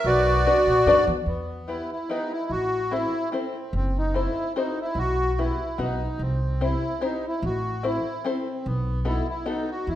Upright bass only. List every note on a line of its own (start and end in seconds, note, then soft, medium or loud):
0.04 0.45 B1 medium
0.67 0.84 A#2 medium
0.86 1.06 F#2 medium
1.07 1.25 E2 medium
1.26 1.80 E2 medium
2.50 3.03 A1 medium
3.73 4.26 F#1 medium
4.95 5.49 B1 medium
5.78 6.05 B1 medium
6.19 6.73 C2 medium
7.42 7.96 A1 medium
8.66 9.19 B1 medium
9.87 9.95 E2 medium